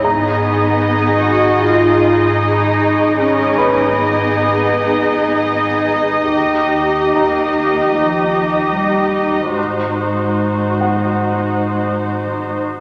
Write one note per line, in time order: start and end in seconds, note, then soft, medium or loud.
0.04 3.15 G#1 soft
0.04 1.18 B3 medium
0.04 3.15 D#4 soft
0.04 3.15 G#4 soft
0.04 3.17 D#5 soft
0.04 2.36 A#5 soft
0.04 5.92 B5 soft
0.04 3.87 C#6 soft
1.22 1.61 F#4 medium
1.61 2.40 F4 medium
1.61 3.87 D6 soft
2.40 3.18 D#4 medium
3.18 6.32 G#1 soft
3.18 3.97 C#4 medium
3.18 9.53 D#4 soft
3.18 6.32 G#4 soft
3.18 9.53 D#5 soft
3.58 5.92 B4 soft
3.58 5.92 B5 soft
3.87 5.13 D6 soft
3.98 5.92 B3 soft
6.36 9.53 D#2 soft
6.36 9.53 G4 soft
7.15 7.91 A#3 soft
7.15 9.53 A#5 soft
7.95 8.76 F3 soft
8.76 9.57 G3 soft
9.57 12.62 G#1 soft
9.57 12.42 G#3 soft
9.57 12.62 D#4 soft
9.57 12.66 F#4 soft
9.57 12.62 C5 soft
10.81 12.80 F#4 soft
10.81 12.80 F#5 soft